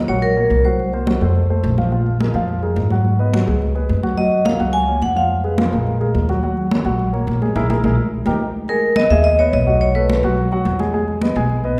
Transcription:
0.08 A#1 F#3 F#4 C#5 F#5, high conga
0.22 A#4, high conga
0.36 A#3 A#4 C#5, high conga
0.50 C2, high conga
0.65 F#3 F#4 C5 F#5
0.80 high conga
0.93 A#3 A#4 C5, high conga
1.07 F#3 F#4 F#5, high conga
1.21 F2 A3 A4 C5, high conga
1.36 high conga
1.50 A3 A4 C5, high conga
1.63 A#1, high conga
1.78 F3 F4 F5, high conga
1.92 F3 F4 F5, high conga
2.06 high conga
2.20 G#3 G#4 A#4, high conga
2.34 F2 F3 F4 F5, high conga
2.48 high conga
2.62 G#3 G#4 A#4, high conga
2.76 G#2, high conga
2.91 F#3 F#4 F#5, high conga
3.05 high conga
3.19 B3 B4 D#5, high conga
3.33 F#3 F#4 F#5, high conga
3.46 C#2 G#3 G#4 B4, high conga
3.62 high conga
3.75 G#3 G#4 B4, high conga
3.89 F#2, high conga
4.03 F#3 F#4 F#5, high conga
4.17 F#3 F#4 D#5 F#5, high conga
4.32 high conga
4.45 A#3 A#4 C#5 F5, high conga
4.59 C#2 F#3 F#4 F#5, high conga
4.73 G#5, high conga
4.88 A#3 A#4 C#5, high conga
5.02 F2 F#5, high conga
5.16 F3 F4 F5
5.30 high conga
5.44 G#3 G#4 B4, high conga
5.58 F3 F4 F5, high conga
5.72 A#1 G#3 G#4 A#4, high conga
5.87 high conga
6.00 G#3 G#4 A#4, high conga
6.14 D#2, high conga
6.29 F#3 F#4 F#5, high conga
6.43 F#3 F#4 F#5, high conga
6.57 high conga
6.71 A#3 A#4 C#5, high conga
6.85 A#1 F#3 F#4 F#5, high conga
6.99 high conga
7.13 A#3 A#4 C#5, high conga
7.27 A#1, high conga
7.42 G#3 G#4 G#5, high conga
7.55 A#1 E4 G#4 A#4, high conga
7.70 A#1 E4 G#4 A#4, high conga
7.84 A#1 E4 G#4 A#4, high conga
8.26 D#2 D#4 G4 A#4, high conga
8.68 G#3 G#4 A#4 G#5, high conga
8.82 high conga
8.96 B3 B4 D#5, high conga
9.07 D#2 D#5 E5, high conga
9.11 G#3 G#4 G#5
9.24 D#5, high conga
9.38 B3 B4 C#5 D#5, high conga
9.53 B1 D#5, high conga
9.67 F#3 F#4 F#5
9.81 C#5, high conga
9.95 A3 A4 B4, high conga
10.10 high conga
10.23 B2 F#3 F#4 F#5, high conga
10.38 high conga
10.52 F#3 F#4 F#5, high conga
10.65 E2, high conga
10.79 G#3 G#4 G#5, high conga
10.94 G#3 G#4 G#5, high conga
11.08 high conga
11.22 B3 B4 D#5, high conga
11.35 B1 G#3 G#4 G#5, high conga
11.50 high conga
11.64 B3 B4 D#5, high conga

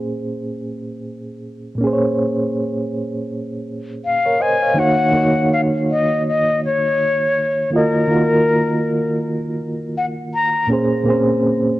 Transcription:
Already playing: A#2 A#3 C#4 G#4 C5
1.75 A#2 A#3
1.81 C#4 G#4
1.87 C5
1.93 C#5
4.05 F5
4.26 A#4 C#5
4.40 C5 D#5 G#5
4.62 C#5 F5
4.74 D#3 A#3 D#4
4.79 F#4 C#5 F#5
5.11 D#3 A#3 D#4
5.16 F#4 C#5
5.54 F5
5.91 D#5
6.28 D#5
6.65 C#5
7.70 D#3 A#3 F4
7.75 F#4 A#4 D#5
8.07 D#3 A#3 F4
8.12 F#4 A#4
9.97 F#5
10.34 A#5
10.67 A#2 A#3 C#4
10.71 G#4 C5
11.04 A#2 A#3 C4
11.09 G#4 C5
11.13 C#4

